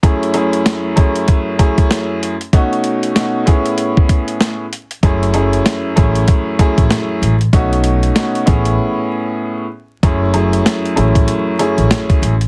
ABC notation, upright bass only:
X:1
M:4/4
L:1/16
Q:"Swing 16ths" 1/4=96
K:F#dor
V:1 name="Upright bass" clef=bass
z16 | z16 | F,,,4 z2 A,,,2 z3 A,,, z2 A,,,2 | B,,,4 z2 A,,,2 z8 |
F,,,4 z2 A,,,2 z3 A,,, z2 A,,,2 |]